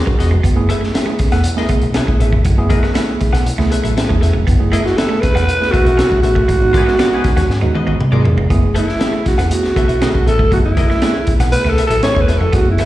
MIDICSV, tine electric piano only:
0, 0, Header, 1, 2, 480
1, 0, Start_track
1, 0, Tempo, 504202
1, 416, Time_signature, 4, 2, 24, 8
1, 12236, End_track
2, 0, Start_track
2, 0, Title_t, "Tine electric piano"
2, 0, Program_c, 0, 4
2, 0, Note_on_c, 0, 68, 78
2, 54, Note_on_c, 0, 71, 60
2, 61, Note_on_c, 0, 63, 48
2, 161, Note_off_c, 0, 68, 0
2, 169, Note_off_c, 0, 71, 0
2, 173, Note_off_c, 0, 63, 0
2, 173, Note_on_c, 0, 68, 76
2, 180, Note_on_c, 0, 59, 67
2, 288, Note_off_c, 0, 68, 0
2, 292, Note_off_c, 0, 59, 0
2, 299, Note_on_c, 0, 66, 62
2, 526, Note_off_c, 0, 66, 0
2, 528, Note_on_c, 0, 57, 102
2, 534, Note_on_c, 0, 59, 82
2, 535, Note_on_c, 0, 64, 89
2, 538, Note_on_c, 0, 68, 107
2, 844, Note_off_c, 0, 57, 0
2, 847, Note_off_c, 0, 59, 0
2, 847, Note_off_c, 0, 64, 0
2, 849, Note_off_c, 0, 68, 0
2, 1009, Note_on_c, 0, 57, 81
2, 1012, Note_on_c, 0, 59, 79
2, 1015, Note_on_c, 0, 64, 70
2, 1016, Note_on_c, 0, 68, 85
2, 1324, Note_off_c, 0, 57, 0
2, 1326, Note_off_c, 0, 59, 0
2, 1327, Note_off_c, 0, 64, 0
2, 1328, Note_off_c, 0, 68, 0
2, 1487, Note_on_c, 0, 57, 97
2, 1491, Note_on_c, 0, 59, 77
2, 1494, Note_on_c, 0, 64, 88
2, 1495, Note_on_c, 0, 68, 99
2, 1803, Note_off_c, 0, 57, 0
2, 1806, Note_off_c, 0, 59, 0
2, 1807, Note_off_c, 0, 64, 0
2, 1807, Note_off_c, 0, 68, 0
2, 1976, Note_on_c, 0, 57, 79
2, 1976, Note_on_c, 0, 59, 65
2, 1980, Note_on_c, 0, 64, 75
2, 1981, Note_on_c, 0, 68, 90
2, 2288, Note_off_c, 0, 57, 0
2, 2288, Note_off_c, 0, 59, 0
2, 2290, Note_off_c, 0, 64, 0
2, 2290, Note_off_c, 0, 68, 0
2, 2453, Note_on_c, 0, 57, 96
2, 2456, Note_on_c, 0, 59, 100
2, 2458, Note_on_c, 0, 64, 92
2, 2459, Note_on_c, 0, 68, 121
2, 2767, Note_off_c, 0, 57, 0
2, 2769, Note_off_c, 0, 59, 0
2, 2769, Note_off_c, 0, 64, 0
2, 2770, Note_off_c, 0, 68, 0
2, 2930, Note_on_c, 0, 59, 65
2, 2931, Note_on_c, 0, 57, 73
2, 2936, Note_on_c, 0, 68, 86
2, 2937, Note_on_c, 0, 64, 76
2, 3246, Note_off_c, 0, 57, 0
2, 3246, Note_off_c, 0, 59, 0
2, 3248, Note_off_c, 0, 68, 0
2, 3249, Note_off_c, 0, 64, 0
2, 3412, Note_on_c, 0, 57, 88
2, 3414, Note_on_c, 0, 59, 86
2, 3416, Note_on_c, 0, 64, 89
2, 3420, Note_on_c, 0, 68, 91
2, 3727, Note_off_c, 0, 57, 0
2, 3727, Note_off_c, 0, 59, 0
2, 3729, Note_off_c, 0, 64, 0
2, 3730, Note_off_c, 0, 68, 0
2, 3889, Note_on_c, 0, 57, 72
2, 3892, Note_on_c, 0, 59, 69
2, 3894, Note_on_c, 0, 64, 68
2, 3897, Note_on_c, 0, 68, 90
2, 4205, Note_off_c, 0, 57, 0
2, 4207, Note_off_c, 0, 59, 0
2, 4208, Note_off_c, 0, 64, 0
2, 4209, Note_off_c, 0, 68, 0
2, 4373, Note_on_c, 0, 57, 83
2, 4373, Note_on_c, 0, 59, 74
2, 4378, Note_on_c, 0, 64, 74
2, 4380, Note_on_c, 0, 68, 91
2, 4687, Note_off_c, 0, 59, 0
2, 4688, Note_off_c, 0, 57, 0
2, 4690, Note_off_c, 0, 64, 0
2, 4691, Note_off_c, 0, 68, 0
2, 4856, Note_on_c, 0, 57, 65
2, 4856, Note_on_c, 0, 59, 63
2, 4860, Note_on_c, 0, 64, 62
2, 4861, Note_on_c, 0, 68, 84
2, 5169, Note_off_c, 0, 57, 0
2, 5169, Note_off_c, 0, 59, 0
2, 5171, Note_off_c, 0, 64, 0
2, 5171, Note_off_c, 0, 68, 0
2, 5331, Note_on_c, 0, 57, 80
2, 5337, Note_on_c, 0, 59, 67
2, 5339, Note_on_c, 0, 64, 77
2, 5341, Note_on_c, 0, 68, 81
2, 5647, Note_off_c, 0, 57, 0
2, 5650, Note_off_c, 0, 59, 0
2, 5650, Note_off_c, 0, 64, 0
2, 5652, Note_off_c, 0, 68, 0
2, 5816, Note_on_c, 0, 57, 67
2, 5819, Note_on_c, 0, 59, 57
2, 5819, Note_on_c, 0, 64, 63
2, 5823, Note_on_c, 0, 68, 68
2, 6129, Note_off_c, 0, 57, 0
2, 6131, Note_off_c, 0, 59, 0
2, 6131, Note_off_c, 0, 64, 0
2, 6133, Note_off_c, 0, 68, 0
2, 6292, Note_on_c, 0, 56, 88
2, 6293, Note_on_c, 0, 59, 77
2, 6298, Note_on_c, 0, 63, 78
2, 6299, Note_on_c, 0, 66, 99
2, 6607, Note_off_c, 0, 56, 0
2, 6608, Note_off_c, 0, 59, 0
2, 6610, Note_off_c, 0, 63, 0
2, 6611, Note_off_c, 0, 66, 0
2, 6778, Note_on_c, 0, 56, 76
2, 6780, Note_on_c, 0, 59, 72
2, 6783, Note_on_c, 0, 63, 74
2, 6784, Note_on_c, 0, 66, 89
2, 7090, Note_off_c, 0, 56, 0
2, 7091, Note_off_c, 0, 59, 0
2, 7092, Note_off_c, 0, 63, 0
2, 7093, Note_off_c, 0, 66, 0
2, 7253, Note_on_c, 0, 56, 100
2, 7256, Note_on_c, 0, 59, 87
2, 7256, Note_on_c, 0, 63, 80
2, 7257, Note_on_c, 0, 66, 105
2, 7568, Note_off_c, 0, 56, 0
2, 7569, Note_off_c, 0, 59, 0
2, 7569, Note_off_c, 0, 63, 0
2, 7570, Note_off_c, 0, 66, 0
2, 7733, Note_on_c, 0, 56, 75
2, 7734, Note_on_c, 0, 59, 70
2, 7736, Note_on_c, 0, 63, 65
2, 7739, Note_on_c, 0, 68, 91
2, 8048, Note_off_c, 0, 56, 0
2, 8048, Note_off_c, 0, 59, 0
2, 8049, Note_off_c, 0, 63, 0
2, 8051, Note_off_c, 0, 68, 0
2, 8089, Note_on_c, 0, 57, 90
2, 8090, Note_on_c, 0, 59, 84
2, 8091, Note_on_c, 0, 64, 90
2, 8095, Note_on_c, 0, 68, 108
2, 8406, Note_off_c, 0, 57, 0
2, 8406, Note_off_c, 0, 59, 0
2, 8407, Note_off_c, 0, 64, 0
2, 8409, Note_off_c, 0, 68, 0
2, 8573, Note_on_c, 0, 57, 76
2, 8575, Note_on_c, 0, 59, 66
2, 8576, Note_on_c, 0, 64, 73
2, 8577, Note_on_c, 0, 68, 85
2, 8888, Note_off_c, 0, 57, 0
2, 8889, Note_off_c, 0, 59, 0
2, 8889, Note_off_c, 0, 64, 0
2, 8890, Note_off_c, 0, 68, 0
2, 9048, Note_on_c, 0, 59, 67
2, 9049, Note_on_c, 0, 57, 69
2, 9051, Note_on_c, 0, 64, 67
2, 9053, Note_on_c, 0, 68, 77
2, 9365, Note_off_c, 0, 57, 0
2, 9365, Note_off_c, 0, 59, 0
2, 9367, Note_off_c, 0, 64, 0
2, 9368, Note_off_c, 0, 68, 0
2, 9530, Note_on_c, 0, 57, 76
2, 9532, Note_on_c, 0, 59, 75
2, 9535, Note_on_c, 0, 64, 71
2, 9539, Note_on_c, 0, 68, 91
2, 9846, Note_off_c, 0, 57, 0
2, 9847, Note_off_c, 0, 59, 0
2, 9849, Note_off_c, 0, 64, 0
2, 9851, Note_off_c, 0, 68, 0
2, 10010, Note_on_c, 0, 57, 83
2, 10015, Note_on_c, 0, 59, 73
2, 10015, Note_on_c, 0, 64, 81
2, 10018, Note_on_c, 0, 68, 82
2, 10326, Note_off_c, 0, 57, 0
2, 10329, Note_off_c, 0, 59, 0
2, 10329, Note_off_c, 0, 64, 0
2, 10330, Note_off_c, 0, 68, 0
2, 10493, Note_on_c, 0, 57, 70
2, 10493, Note_on_c, 0, 59, 61
2, 10496, Note_on_c, 0, 64, 62
2, 10498, Note_on_c, 0, 68, 83
2, 10807, Note_off_c, 0, 57, 0
2, 10807, Note_off_c, 0, 59, 0
2, 10809, Note_off_c, 0, 64, 0
2, 10810, Note_off_c, 0, 68, 0
2, 10974, Note_on_c, 0, 57, 69
2, 10977, Note_on_c, 0, 59, 61
2, 10978, Note_on_c, 0, 64, 59
2, 10980, Note_on_c, 0, 68, 75
2, 11288, Note_off_c, 0, 57, 0
2, 11289, Note_off_c, 0, 59, 0
2, 11290, Note_off_c, 0, 64, 0
2, 11291, Note_off_c, 0, 68, 0
2, 11454, Note_on_c, 0, 57, 90
2, 11458, Note_on_c, 0, 59, 75
2, 11461, Note_on_c, 0, 64, 83
2, 11463, Note_on_c, 0, 68, 91
2, 11768, Note_off_c, 0, 57, 0
2, 11770, Note_off_c, 0, 59, 0
2, 11771, Note_off_c, 0, 64, 0
2, 11772, Note_off_c, 0, 68, 0
2, 11934, Note_on_c, 0, 57, 72
2, 11938, Note_on_c, 0, 64, 74
2, 11939, Note_on_c, 0, 59, 73
2, 11943, Note_on_c, 0, 68, 82
2, 12236, Note_off_c, 0, 57, 0
2, 12236, Note_off_c, 0, 59, 0
2, 12236, Note_off_c, 0, 64, 0
2, 12236, Note_off_c, 0, 68, 0
2, 12236, End_track
0, 0, End_of_file